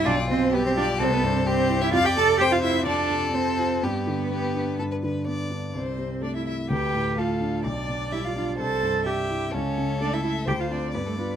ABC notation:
X:1
M:4/4
L:1/16
Q:1/4=127
K:Gmix
V:1 name="Violin"
d2 c2 B c d2 c B c2 c3 e | f g a2 g f e2 d4 c4 | B12 z4 | c4 d e e2 g4 f4 |
d4 e f f2 a4 g4 | ^c4 d e e2 g f d2 B A B2 |]
V:2 name="Violin"
F4 G4 A4 G4 | d4 c4 A8 | G4 G4 A B B2 d4 | z8 B4 A4 |
d8 c4 e4 | A8 c4 d4 |]
V:3 name="Cello"
D2 C2 B, C D2 C B, C2 C3 E | F G A2 G F E2 D4 C4 | B,12 z4 | C4 D E E2 G4 F4 |
D4 E F F2 A4 G4 | ^C4 D E E2 G F D2 B, A, B,2 |]
V:4 name="Grand piano" clef=bass
B,,,2 B,,2 G,2 F2 C,,2 G,,2 C2 E2 | F,,2 C,2 C2 F2 F,,2 C,2 C2 F2 | G,,2 D,2 B,2 D2 G,,2 D,2 B,2 D2 | C,,2 C,2 A,2 E2 D,,2 A,,2 A,2 D2 |
B,,,2 B,,2 G,2 D2 C,,2 G,,2 G,2 E2 | ^C,,2 ^C,2 A,2 E2 D,,2 [=CF]2 G,,2 [DF]2 |]